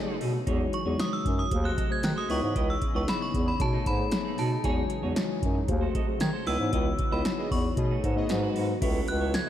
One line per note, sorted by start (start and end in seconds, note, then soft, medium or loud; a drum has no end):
0.00 1.48 C#3 medium
0.00 0.46 F#3 medium
0.00 0.15 A3 loud
0.00 0.33 A3 medium
0.00 0.44 B3 medium
0.00 0.33 D#4 medium
0.00 0.15 G#4 loud
0.00 0.33 G#4 medium
0.00 0.33 C#5 medium
0.00 0.15 D#5 loud
0.00 1.47 D#5 medium
0.08 0.19 A3 medium
0.08 0.20 D#4 medium
0.08 0.21 G#4 medium
0.20 0.39 B2 medium
0.20 0.39 A3 medium
0.20 0.34 D#4 medium
0.20 0.33 G#4 loud
0.20 open hi-hat medium
0.34 muted clean electric guitar stroke soft
0.47 0.65 E2 loud
0.47 1.50 E3 medium
0.47 1.50 F#3 medium
0.47 0.78 G#3 medium
0.47 1.50 G#3 medium
0.47 0.65 D#4 medium
0.47 0.78 D#4 medium
0.47 0.78 F#4 medium
0.47 0.60 G#4 medium
0.47 0.78 C#5 loud
0.47 0.59 C#5 medium
0.47 kick loud
0.47 closed hi-hat medium
0.60 muted clean electric guitar stroke soft
0.73 1.00 C#6 medium
0.73 muted clean electric guitar stroke soft
0.73 closed hi-hat medium
0.86 0.95 E2 loud
0.86 1.51 G#3 medium
0.86 1.51 D#4 medium
0.86 0.98 D#4 medium
0.86 1.51 F#4 medium
0.86 0.98 G#4 medium
0.86 0.99 C#5 medium
0.86 1.52 C#5 medium
0.99 1.13 D#6 medium
0.99 muted clean electric guitar stroke soft
0.99 snare loud
0.99 closed hi-hat medium
1.12 1.39 E6 loud
1.12 muted clean electric guitar stroke medium
1.25 1.44 F#2 medium
1.25 kick loud
1.25 closed hi-hat medium
1.38 1.66 D#6 loud
1.38 muted clean electric guitar stroke medium
1.51 1.70 D#2 loud
1.51 2.29 C3 medium
1.51 2.29 F#3 medium
1.51 1.83 A3 medium
1.51 2.29 A3 medium
1.51 1.83 F#4 medium
1.51 8.78 G#4 medium
1.51 1.83 G#4 medium
1.51 1.83 C5 medium
1.51 3.58 D#5 medium
1.51 muted clean electric guitar stroke soft
1.51 kick loud
1.51 closed hi-hat loud
1.64 1.76 F#4 medium
1.64 1.77 A4 medium
1.64 1.78 C5 medium
1.64 1.89 F#6 loud
1.77 1.91 F#4 medium
1.77 1.90 A4 medium
1.77 1.90 D#5 medium
1.77 kick loud
1.77 closed hi-hat medium
1.90 2.29 A3 medium
1.90 2.29 F#4 medium
1.90 2.30 G#4 medium
1.90 2.30 C5 medium
1.90 2.05 G#6 loud
1.90 muted clean electric guitar stroke medium
2.03 2.13 D#3 loud
2.03 2.16 F#6 medium
2.03 muted clean electric guitar stroke soft
2.03 snare loud
2.03 closed hi-hat medium
2.16 2.28 F#4 medium
2.16 2.29 A4 medium
2.16 2.30 C5 medium
2.16 2.23 D#6 loud
2.29 2.39 C#2 loud
2.29 4.62 C#3 medium
2.29 3.59 E3 medium
2.29 2.82 B3 medium
2.29 3.59 B3 medium
2.29 2.82 D#4 medium
2.29 2.47 E4 medium
2.29 2.82 E4 medium
2.29 2.42 B4 medium
2.29 2.82 C#5 medium
2.29 2.41 D#5 medium
2.29 2.70 C#6 loud
2.29 open hi-hat medium
2.42 2.52 G#2 medium
2.42 muted clean electric guitar stroke soft
2.55 2.74 C#2 loud
2.55 2.74 E4 medium
2.55 2.69 B4 medium
2.55 2.67 D#5 medium
2.55 kick loud
2.55 closed hi-hat medium
2.69 2.94 E6 medium
2.69 muted clean electric guitar stroke soft
2.81 muted clean electric guitar stroke soft
2.81 kick medium
2.81 closed hi-hat medium
2.94 3.04 C#2 loud
2.94 3.60 B3 medium
2.94 3.59 D#4 medium
2.94 3.60 E4 medium
2.94 3.06 E4 medium
2.94 3.07 B4 medium
2.94 3.59 C#5 medium
2.94 3.07 D#5 medium
2.94 3.08 C#6 medium
3.07 3.15 B5 medium
3.07 muted clean electric guitar stroke soft
3.07 snare loud
3.07 closed hi-hat medium
3.20 3.48 C#6 medium
3.20 muted clean electric guitar stroke soft
3.34 3.52 E2 medium
3.34 kick medium
3.34 closed hi-hat medium
3.46 3.61 B5 medium
3.46 muted clean electric guitar stroke soft
3.60 3.78 B2 loud
3.60 3.91 A3 medium
3.60 4.63 A3 medium
3.60 4.63 B3 medium
3.60 5.66 D#4 loud
3.60 3.91 D#4 medium
3.60 3.91 G#4 medium
3.60 3.91 C#5 medium
3.60 3.88 A5 loud
3.60 muted clean electric guitar stroke soft
3.60 kick loud
3.60 closed hi-hat medium
3.73 3.84 A3 medium
3.73 3.85 D#4 medium
3.73 3.86 G#4 medium
3.86 4.04 G#2 loud
3.86 4.40 B5 loud
3.86 muted clean electric guitar stroke soft
3.86 kick loud
3.86 closed hi-hat medium
3.99 4.50 A3 medium
3.99 4.50 D#4 medium
3.99 4.50 G#4 medium
3.99 4.50 C#5 medium
3.99 muted clean electric guitar stroke medium
4.11 muted clean electric guitar stroke soft
4.11 snare loud
4.11 closed hi-hat loud
4.25 4.36 A3 medium
4.25 4.37 D#4 medium
4.25 4.38 G#4 medium
4.38 4.56 B2 loud
4.38 4.56 A3 medium
4.38 4.51 D#4 loud
4.38 4.50 G#4 loud
4.38 4.65 A5 medium
4.38 open hi-hat medium
4.51 muted clean electric guitar stroke soft
4.64 4.82 E2 loud
4.64 5.68 C#3 medium
4.64 5.68 E3 medium
4.64 6.45 F#3 medium
4.64 4.95 G#3 medium
4.64 4.82 D#4 medium
4.64 4.95 D#4 medium
4.64 4.95 F#4 medium
4.64 4.77 G#4 medium
4.64 4.95 C#5 medium
4.64 4.76 C#5 medium
4.64 5.39 G#5 medium
4.64 kick loud
4.64 closed hi-hat medium
4.77 muted clean electric guitar stroke soft
4.90 muted clean electric guitar stroke soft
4.90 closed hi-hat medium
5.03 5.12 E2 medium
5.03 5.68 G#3 medium
5.03 5.69 D#4 medium
5.03 5.15 D#4 medium
5.03 5.67 F#4 medium
5.03 5.16 G#4 medium
5.03 5.16 C#5 medium
5.03 5.69 C#5 medium
5.16 muted clean electric guitar stroke soft
5.16 snare loud
5.16 closed hi-hat medium
5.29 muted clean electric guitar stroke soft
5.42 5.61 F#2 medium
5.42 kick loud
5.42 closed hi-hat medium
5.55 muted clean electric guitar stroke soft
5.68 5.87 D#2 loud
5.68 6.46 C3 medium
5.68 6.00 A3 medium
5.68 6.46 A3 medium
5.68 6.00 F#4 medium
5.68 8.27 F#4 medium
5.68 6.00 G#4 medium
5.68 6.00 C5 loud
5.68 muted clean electric guitar stroke soft
5.68 kick loud
5.68 closed hi-hat medium
5.81 5.93 F#4 medium
5.81 5.94 A4 medium
5.81 5.95 C5 medium
5.94 6.09 F#4 medium
5.94 6.07 A4 medium
5.94 6.07 D#5 medium
5.94 kick medium
5.94 closed hi-hat medium
6.07 6.47 A3 medium
6.07 6.47 F#4 medium
6.07 6.47 G#4 medium
6.07 6.47 C5 medium
6.07 muted clean electric guitar stroke soft
6.20 6.30 D#3 loud
6.20 6.33 G#6 loud
6.20 muted clean electric guitar stroke soft
6.20 snare loud
6.20 closed hi-hat medium
6.33 6.46 F#4 medium
6.33 6.47 A4 medium
6.33 6.47 C5 medium
6.46 6.56 C#2 loud
6.46 8.28 C#3 medium
6.46 7.76 E3 medium
6.46 6.99 B3 medium
6.46 8.79 B3 medium
6.46 6.99 D#4 medium
6.46 6.65 E4 medium
6.46 6.99 E4 medium
6.46 6.59 B4 medium
6.46 6.99 C#5 medium
6.46 6.58 D#5 medium
6.46 7.14 E6 loud
6.46 open hi-hat medium
6.59 6.69 G#2 loud
6.59 muted clean electric guitar stroke medium
6.72 6.91 C#2 loud
6.72 6.91 E4 medium
6.72 6.86 B4 medium
6.72 6.84 D#5 medium
6.72 kick loud
6.72 closed hi-hat loud
6.86 muted clean electric guitar stroke soft
6.99 muted clean electric guitar stroke soft
6.99 kick medium
6.99 closed hi-hat medium
7.12 7.21 C#2 loud
7.12 7.77 B3 medium
7.12 7.23 B3 medium
7.12 7.76 D#4 medium
7.12 7.77 E4 medium
7.12 7.23 E4 medium
7.12 7.23 G#4 medium
7.12 7.24 B4 medium
7.12 7.77 C#5 medium
7.12 7.25 D#5 medium
7.12 7.23 D#5 medium
7.12 7.53 B5 medium
7.25 muted clean electric guitar stroke soft
7.25 snare loud
7.25 closed hi-hat medium
7.38 7.49 B3 medium
7.38 7.49 G#4 loud
7.38 7.49 D#5 loud
7.38 muted clean electric guitar stroke medium
7.51 7.70 E2 medium
7.51 8.00 C#6 medium
7.51 kick loud
7.51 open hi-hat medium
7.64 muted clean electric guitar stroke medium
7.77 7.96 B2 loud
7.77 8.08 A3 medium
7.77 7.88 A3 medium
7.77 8.29 A3 medium
7.77 8.08 D#4 medium
7.77 7.88 G#4 medium
7.77 8.09 G#4 medium
7.77 8.09 C#5 medium
7.77 7.88 D#5 medium
7.77 muted clean electric guitar stroke soft
7.77 kick loud
7.77 closed hi-hat medium
7.90 8.02 A3 medium
7.90 8.03 D#4 medium
7.90 8.04 G#4 medium
8.03 8.22 G#2 loud
8.03 8.18 A3 medium
8.03 8.17 D#4 medium
8.03 8.16 A4 medium
8.03 kick medium
8.03 closed hi-hat medium
8.16 8.29 A3 loud
8.16 8.39 B3 loud
8.16 8.28 D#4 medium
8.16 8.39 G#4 loud
8.16 8.30 G#4 medium
8.16 8.39 D#5 loud
8.16 8.30 D#5 loud
8.16 muted clean electric guitar stroke medium
8.29 8.48 G#2 loud
8.29 8.82 D#3 medium
8.29 8.81 F#3 medium
8.29 8.71 G#3 loud
8.29 8.71 D#4 medium
8.29 8.71 F#4 medium
8.29 8.82 F#4 medium
8.29 8.72 B4 loud
8.29 muted clean electric guitar stroke soft
8.29 snare loud
8.29 closed hi-hat loud
8.43 8.54 D#4 medium
8.43 8.55 F#4 medium
8.43 8.56 B4 medium
8.55 8.74 G#2 loud
8.55 8.74 D#4 medium
8.55 8.68 F#4 medium
8.55 8.67 B4 medium
8.55 open hi-hat medium
8.68 muted clean electric guitar stroke soft
8.81 9.00 C#2 loud
8.81 9.49 C#3 medium
8.81 9.49 F#3 medium
8.81 9.49 A3 medium
8.81 9.49 B3 medium
8.81 9.49 C#4 medium
8.81 9.06 E4 medium
8.81 9.49 E4 loud
8.81 9.49 F#4 medium
8.81 9.49 A4 medium
8.81 9.06 A4 medium
8.81 9.49 B4 medium
8.81 9.06 C#5 medium
8.81 9.49 E5 loud
8.81 kick loud
8.81 closed hi-hat loud
8.81 crash loud
9.08 9.35 C#2 loud
9.08 9.35 F#6 loud
9.08 muted clean electric guitar stroke soft
9.08 closed hi-hat medium
9.21 9.32 E4 medium
9.21 9.33 A4 medium
9.21 9.34 C#5 medium
9.34 9.49 G#6 loud
9.34 snare loud
9.34 closed hi-hat loud